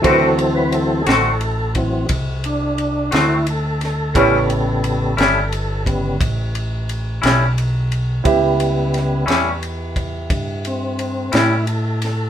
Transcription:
<<
  \new Staff \with { instrumentName = "Grand piano" } { \time 12/8 \key a \mixolydian \tempo 4. = 59 <e' fis' a' c''>1. | <e' g' b' cis''>1. | <e' g' b' e''>1. | }
  \new Staff \with { instrumentName = "Tonewheel organ" } { \time 12/8 \key a \mixolydian b'16 a'16 a'16 b'16 a'8 <gis' a'>4 r4 d'4 e'8 a'8 a'8~ | a'2~ a'8 r2. r8 | r2. r8 c'4 e'8 a'8 a'8 | }
  \new Staff \with { instrumentName = "Tonewheel organ" } { \clef bass \time 12/8 \key a \mixolydian <e fis c'>4. r4 <e fis c'>8 r2. | <cis g b>4. r4 <cis g b>8 r2. | <cis g b>4. r1 r8 | }
  \new Staff \with { instrumentName = "Clean electric guitar" } { \time 12/8 \key a \mixolydian <d a c' fis'>8 r4 <d a c' fis'>8 r2 r8 <d a c' fis'>8 r4 | <a, g cis' e'>8 r4 <a, g cis' e'>8 r2 r8 <a, g cis' e'>8 r4 | r4. <a, g cis' e'>8 r2 r8 <a, g cis' e'>8 r4 | }
  \new Staff \with { instrumentName = "Fingered electric bass" } { \clef bass \time 12/8 \key a \mixolydian d,4. a,,4. c,4. d,4. | a,,4. g,,4. a,,4. b,,4. | cis,4. e,4. g,4. a,4. | }
  \new DrumStaff \with { instrumentName = "Drums" } \drummode { \time 12/8 <bd cymr>8 cymr8 cymr8 <cymr sn>8 cymr8 <bd cymr>8 <bd cymr>8 cymr8 cymr8 <cymr sn>8 cymr8 <cymr sn>8 | <bd cymr>8 cymr8 cymr8 <cymr sn>8 cymr8 <bd cymr>8 <bd cymr>8 cymr8 cymr8 <cymr sn>8 cymr8 cymr8 | <bd cymr>8 cymr8 <cymr sn>8 <cymr sn>8 cymr8 <bd cymr>8 <bd cymr>8 cymr8 cymr8 <cymr sn>8 cymr8 <cymr sn>8 | }
>>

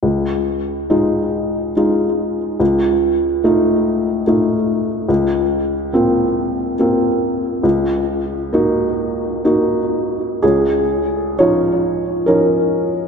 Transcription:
\new Staff \with { instrumentName = "Felt piano" } { \time 3/4 \key des \major \tempo 4 = 70 des,4 <aes ees' f'>4 <aes ees' f'>4 | des,4 <a ees' f'>4 <a ees' f'>4 | des,4 <bes c' f'>4 <bes c' f'>4 | des,4 <bes ees' ges'>4 <bes ees' ges'>4 |
<des, des' aes'>4 <f des' ees' f' des''>4 <f des' ees' bes'>4 | }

